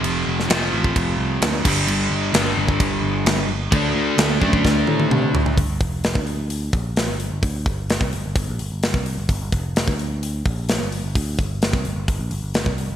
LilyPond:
<<
  \new Staff \with { instrumentName = "Overdriven electric guitar" } { \clef bass \time 4/4 \key f \lydian \tempo 4 = 129 <f, c f>4 <f, c f>2~ <f, c f>8 <g, d g>8~ | <g, d g>4 <g, d g>2~ <g, d g>8 r8 | <d a d'>4. <d a d'>2~ <d a d'>8 | r1 |
r1 | r1 | r1 | }
  \new Staff \with { instrumentName = "Picked electric bass" } { \clef bass \time 4/4 \key f \lydian f,,8 f,,8 f,,8 a,,8 f,,8 c,8 d,8 g,,8 | g,,8 g,,8 g,,8 g,,8 g,,8 g,,8 g,,8 g,,8 | d,8 d,8 d,8 fis,8 d,8 a,8 c8 d,8 | g,,16 g,,16 f,,8. d,4~ d,16 bes,,8. g,,8 g,,16 |
d,8 g,,8. c,16 g,,16 g,,16 g,,16 bes,,16 g,,16 g,,8 c,8 g,,16 | g,,16 g,,16 f,,8. d,4~ d,16 bes,,8. g,,8 g,,16 | d,8 g,,8. c,16 g,,16 g,,16 g,,16 bes,,16 g,,16 g,,8 c,8 g,,16 | }
  \new DrumStaff \with { instrumentName = "Drums" } \drummode { \time 4/4 cymc8. sn16 <cymc sn>8. bd16 <cymc bd>4 <cymc sn>8 <cymc bd>8 | cymc4 <cymc sn>8. bd16 <cymc bd>4 <cymc sn>4 | <cymc bd>4 <cymc sn>8 bd16 bd16 <bd sn>8 tommh16 tommh16 toml8 tomfh16 tomfh16 | <hho bd>8 <hho bd>8 <hho sn>16 bd16 hho8 hho8 <hho bd>8 <hho sn>8 hho8 |
<hho bd>8 <hho bd>8 <hho sn>16 bd16 hho8 <hho bd>8 hho8 <hho sn>16 bd16 hho8 | <hho bd>8 <hho bd>8 <hho sn>16 bd16 hho8 hho8 <hho bd>8 <hho sn>8 hho8 | <hho bd>8 <hho bd>8 <hho sn>16 bd16 hho8 <hho bd>8 hho8 <hho sn>16 bd16 hho8 | }
>>